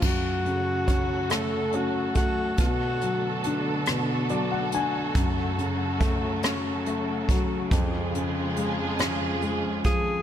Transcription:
0.01 2.54 F#2 medium
0.01 2.57 C#3 medium
0.01 2.57 F#3 soft
0.01 7.68 A3 medium
0.01 2.57 F#4 soft
0.01 1.32 F#4 medium
0.01 7.68 A4 medium
0.01 kick loud
0.01 crash medium
0.46 2.12 C#3 soft
0.46 closed hi-hat soft
0.88 1.72 C#4 soft
0.88 kick medium
0.88 closed hi-hat medium
1.30 2.14 A3 medium
1.30 1.77 A4 medium
1.30 cross-stick medium
1.30 closed hi-hat medium
1.72 2.57 C#4 soft
1.72 2.16 F#4 medium
1.72 closed hi-hat soft
2.15 2.57 A3 soft
2.15 2.56 F#4 medium
2.15 kick medium
2.15 closed hi-hat soft
2.58 3.87 B2 medium
2.58 5.13 D3 medium
2.58 5.13 B3 medium
2.58 3.52 F#4 medium
2.58 7.68 F#4 medium
2.58 kick medium
2.58 closed hi-hat medium
3.01 4.29 F#3 soft
3.01 closed hi-hat soft
3.44 4.73 D4 soft
3.44 closed hi-hat medium
3.86 5.12 B2 soft
3.86 cross-stick medium
3.86 closed hi-hat medium
4.29 5.13 F#3 soft
4.29 4.50 D5 medium
4.29 closed hi-hat soft
4.52 4.71 F#5 soft
4.72 5.15 D4 soft
4.72 5.13 G#5 medium
4.72 closed hi-hat medium
5.15 7.68 F#2 medium
5.15 10.22 C#3 medium
5.15 7.69 F#3 medium
5.15 kick loud
5.15 closed hi-hat medium
5.58 7.25 C#3 soft
5.58 closed hi-hat soft
6.00 6.86 A3 medium
6.00 kick medium
6.00 closed hi-hat medium
6.43 7.68 C#4 medium
6.43 cross-stick medium
6.43 closed hi-hat medium
6.86 7.69 A3 soft
6.86 closed hi-hat soft
7.29 7.71 F#3 medium
7.29 kick medium
7.29 closed hi-hat medium
7.71 10.22 F2 medium
7.71 10.22 F3 medium
7.71 10.22 G#3 medium
7.71 10.22 F4 medium
7.71 10.22 G#4 medium
7.71 kick loud
7.71 closed hi-hat medium
8.14 9.81 C#3 soft
8.14 closed hi-hat soft
8.57 9.41 G#3 soft
8.57 closed hi-hat medium
8.99 10.22 C#4 medium
8.99 cross-stick medium
8.99 closed hi-hat medium
9.42 10.22 G#3 soft
9.42 closed hi-hat soft
9.84 10.22 F3 soft
9.84 10.22 G#4 medium
9.84 kick medium
9.84 closed hi-hat medium

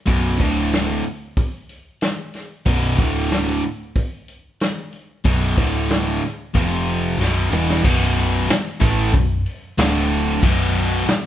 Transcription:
0.06 0.38 B0 medium
0.06 0.38 B1 medium
0.06 0.38 F#2 medium
0.06 0.38 B2 medium
0.06 kick loud
0.06 open hi-hat medium
0.39 1.00 D1 medium
0.39 1.03 D2 medium
0.39 1.03 A2 medium
0.39 1.03 D3 medium
0.39 kick loud
0.39 open hi-hat soft
0.72 snare loud
0.72 open hi-hat medium
1.05 open hi-hat soft
1.37 kick loud
1.37 open hi-hat medium
1.69 open hi-hat soft
2.01 snare loud
2.01 open hi-hat medium
2.34 snare soft
2.34 open hi-hat medium
2.66 2.96 B0 medium
2.66 2.97 B1 medium
2.66 2.97 F#2 medium
2.66 2.98 B2 medium
2.66 kick loud
2.66 open hi-hat medium
2.97 3.59 D1 medium
2.97 3.62 D2 medium
2.97 3.62 A2 medium
2.97 3.62 D3 medium
2.97 kick loud
2.97 open hi-hat soft
3.31 snare loud
3.31 open hi-hat medium
3.63 open hi-hat soft
3.96 kick medium
3.96 open hi-hat medium
4.28 open hi-hat soft
4.60 snare loud
4.60 open hi-hat medium
4.93 open hi-hat soft
5.24 5.55 B0 medium
5.24 5.56 B1 medium
5.24 5.56 F#2 medium
5.24 5.57 B2 medium
5.24 kick loud
5.24 open hi-hat medium
5.57 6.18 D1 medium
5.57 6.21 D2 medium
5.57 6.21 A2 medium
5.57 6.21 D3 medium
5.57 kick loud
5.57 open hi-hat soft
5.89 snare loud
5.89 open hi-hat medium
6.22 snare soft
6.22 open hi-hat soft
6.54 7.15 F1 medium
6.54 7.18 F2 medium
6.54 7.18 C3 medium
6.54 7.19 F3 medium
6.54 kick loud
6.54 open hi-hat medium
6.88 open hi-hat soft
7.18 7.49 B0 medium
7.18 7.50 B1 medium
7.18 7.51 F#2 medium
7.18 7.50 B2 loud
7.18 snare medium
7.51 7.82 E1 medium
7.51 7.82 E2 medium
7.51 7.83 B2 medium
7.51 7.83 E3 medium
7.51 mid tom medium
7.70 snare medium
7.83 8.45 B0 loud
7.83 8.47 B1 loud
7.83 8.47 F#2 loud
7.83 8.48 B2 loud
7.83 kick loud
7.83 crash loud
8.17 open hi-hat medium
8.48 muted picked electric bass stroke soft
8.48 muted overdriven electric guitar stroke medium
8.48 snare loud
8.48 open hi-hat medium
8.80 9.11 A1 loud
8.80 9.12 A2 medium
8.80 9.12 E3 loud
8.80 9.12 A3 loud
8.80 kick medium
8.80 open hi-hat soft
9.13 9.44 B0 medium
9.13 9.39 B1 medium
9.13 9.39 F#2 medium
9.13 kick loud
9.13 open hi-hat medium
9.46 open hi-hat medium
9.78 10.38 D1 medium
9.78 10.41 D2 medium
9.78 10.42 A2 medium
9.78 10.42 D3 loud
9.78 snare loud
9.78 open hi-hat medium
10.10 open hi-hat medium
10.42 11.03 B0 medium
10.42 11.05 B1 loud
10.42 11.06 F#2 medium
10.42 11.06 B2 loud
10.42 kick loud
10.42 open hi-hat medium
10.75 open hi-hat medium
11.06 muted overdriven electric guitar stroke medium
11.06 muted picked electric bass stroke soft
11.06 snare loud
11.06 open hi-hat medium

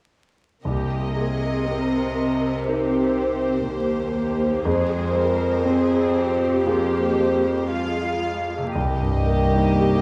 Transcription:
0.64 4.62 C2 soft
0.64 3.62 C3 soft
0.64 1.63 A#3 soft
0.64 1.13 G4 soft
0.64 2.63 D#5 soft
1.15 1.66 G#4 soft
1.66 2.15 C4 soft
1.66 3.27 C4 soft
1.66 2.67 A#4 soft
2.16 3.63 C4 soft
2.66 4.62 D#4 soft
2.66 3.65 G4 soft
2.66 4.63 A#4 soft
2.66 4.65 C5 soft
3.66 4.66 D#2 soft
3.66 4.64 A#3 soft
3.66 4.14 G4 soft
4.15 4.65 G4 soft
4.65 8.71 F2 soft
4.65 8.55 F2 medium
4.65 5.66 G#3 soft
4.65 5.16 G#4 soft
4.65 6.64 C5 medium
5.15 5.66 A#4 soft
5.65 6.68 C4 soft
5.65 7.29 C4 soft
5.65 6.17 G#4 medium
6.18 7.71 G4 medium
6.66 7.71 A#3 soft
6.66 8.71 F4 soft
6.66 8.71 G#4 soft
6.66 7.69 C5 soft
7.71 8.54 G#3 soft
7.71 8.56 F4 soft
7.71 8.56 F5 soft
8.58 10.02 C3 soft
8.63 10.02 A#3 soft
8.67 10.02 G4 soft
8.72 10.02 C2 soft
8.72 10.02 D#5 soft
8.76 10.02 A#3 soft
8.76 10.02 G4 soft
8.76 10.02 D#5 soft
9.01 9.42 G2 soft
9.26 9.68 A#3 soft
9.54 9.94 D#4 soft
9.80 10.02 G4 soft

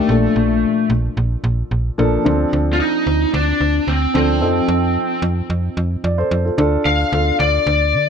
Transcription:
0.00 0.11 D#3 medium
0.00 0.86 A3 medium
0.00 0.11 A#3 medium
0.00 0.09 D4 medium
0.00 0.12 G4 medium
0.09 0.29 A#1 loud
0.09 0.88 A#2 medium
0.09 0.88 F3 medium
0.09 0.89 D4 medium
0.09 0.89 A4 medium
0.36 0.65 A#1 loud
0.90 1.10 A#1 loud
1.17 1.37 A#1 loud
1.44 1.64 A#1 loud
1.71 1.91 A#1 medium
1.98 2.18 A#1 loud
1.98 2.18 F3 medium
1.98 2.18 A#3 medium
1.98 2.19 D4 medium
1.98 2.19 A4 loud
2.25 2.46 D2 loud
2.25 3.04 F3 medium
2.25 3.04 C4 medium
2.25 3.05 D4 medium
2.25 3.05 A4 medium
2.53 2.82 D2 loud
2.73 2.80 F4 medium
2.80 3.33 D#4 loud
3.07 3.26 D2 loud
3.34 3.53 D2 loud
3.34 3.90 D4 loud
3.61 3.80 D2 medium
3.88 4.07 D2 loud
3.88 4.15 C4 medium
4.14 4.43 D2 loud
4.14 4.34 F3 medium
4.14 4.34 C4 medium
4.14 5.20 C4 medium
4.14 4.35 D4 medium
4.14 4.35 A4 medium
4.41 4.61 F2 loud
4.41 5.21 F3 medium
4.41 5.21 C4 medium
4.41 5.21 D#4 medium
4.41 5.21 A4 medium
4.68 4.98 F2 loud
5.22 5.42 F2 loud
5.50 5.69 F2 loud
5.77 5.97 F2 loud
6.04 6.24 F2 loud
6.04 6.17 D5 medium
6.18 6.43 A4 medium
6.18 6.44 C5 medium
6.31 6.51 F2 loud
6.45 6.57 F4 medium
6.45 6.58 A4 medium
6.58 6.78 D2 loud
6.58 6.98 D4 medium
6.58 6.98 F4 medium
6.58 6.98 A4 loud
6.85 7.05 D2 loud
6.85 7.39 F5 loud
7.12 7.32 D2 loud
7.12 7.91 D4 medium
7.12 7.91 F4 medium
7.12 7.92 A4 medium
7.40 7.59 D2 loud
7.40 8.09 D5 medium
7.67 7.95 D2 loud
7.94 8.09 D3 loud

